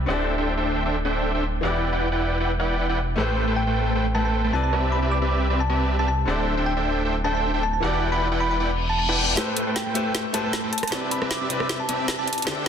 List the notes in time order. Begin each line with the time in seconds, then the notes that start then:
0.06 D1 D3 C4 D4 E4 G4 A4 C5 E5 G5
0.10 D5
0.38 D4 A4 C5 E5 G5
0.57 D4 A4 C5 E5 G5
0.86 D4 A4 C5 E5 G5
1.05 D4 A4 C5 E5 G5
1.35 D4 A4 C5 E5 G5
1.61 E1 E3 E4 F#4 G4 B4 D5 F#5 G5
1.65 D5
1.92 E4 B4 D5 F#5 G5
2.12 E4 B4 D5 F#5 G5
2.40 E4 B4 D5 F#5 G5
2.59 E4 B4 D5 F#5 G5
2.89 E4 B4 D5 F#5 G5
3.16 A1 A3 E4 G4 A4 B4 C5 G5
3.47 A3 A4 B4 C5 G5
3.56 G5
3.67 A3 A4 B4 C5 G5
3.95 A3 A4 B4 C5 G5
4.15 A3 A4 B4 C5 G5 A5
4.25 A5
4.44 A3 A4 B4 C5 G5
4.51 C2 C3 C4 E4 B4 A5
4.55 D5
4.64 A5
4.73 C4 G4 B4 D5 E5
4.92 B5
5.02 C4 G4 B4 D5 E5
5.11 D6
5.22 C4 G4 B4 D5 E5
5.50 C4 G4 B4 D5 E5
5.60 A5
5.69 C4 G4 B4 D5 E5
5.99 C4 G4 B4 D5 E5 A5
6.08 A5
6.25 D1 D3 C4 D4 E4 G4 A4 C5 E5 G5
6.29 D5
6.57 D4 A4 C5 E5 G5
6.66 G5
6.77 D4 A4 C5 E5 G5
7.05 D4 A4 C5 E5 G5
7.24 D4 A4 C5 E5 G5 A5
7.35 A5
7.54 D4 A4 C5 E5 G5
7.63 A5
7.73 A5
7.80 E1 E3 E4 F#4 G4 B4 D5 F#5 G5
7.84 D5
8.12 E4 B4 D5 F#5 G5 B5
8.31 E4 B4 D5 F#5 G5
8.40 B5
8.51 B5
8.60 E4 B4 D5 F#5 G5, reverse cymbal
8.89 A5
8.99 A5
9.09 E4 B4 D5 F#5 G5
9.35 A3 E4 G4 A4 B4 C5 G5, snare, closed hi-hat, riser
9.39 C5
9.57 closed hi-hat
9.67 A3 A4 B4 C5 G5
9.76 G5, snare, closed hi-hat
9.86 A3 A4 B4 C5 G5
9.94 A3 E4 G4 B4 C5, closed hi-hat
10.14 A3 A4 B4 C5 G5, snare, closed hi-hat
10.33 A3 E4 G4 A4 B4 C5 G5 A5, closed hi-hat
10.44 A5
10.53 snare, closed hi-hat
10.64 A3 A4 B4 C5 G5
10.73 A5, closed hi-hat
10.78 closed hi-hat
10.83 A5, cross-stick, closed hi-hat
10.88 C3 C4, closed hi-hat
10.92 C4 E4 G4 B4 D5 E5, snare, closed hi-hat
11.11 B5, closed hi-hat
11.22 C4 G4 B4 D5 E5, cross-stick
11.31 D6, snare, closed hi-hat
11.41 C4 G4 B4 D5 E5
11.48 C3 C4 E4 B4 D5, closed hi-hat
11.60 cross-stick
11.69 C4 G4 B4 D5 E5, snare, closed hi-hat
11.80 A5
11.89 C4 G4 B4 D5 E5, closed hi-hat
12.08 snare, closed hi-hat
12.18 C4 G4 B4 D5 E5 A5
12.27 A5, closed hi-hat
12.33 closed hi-hat
12.38 closed hi-hat
12.42 D3 C4, closed hi-hat
12.47 D4 E4 G4 A4 C5 D5 E5 G5, snare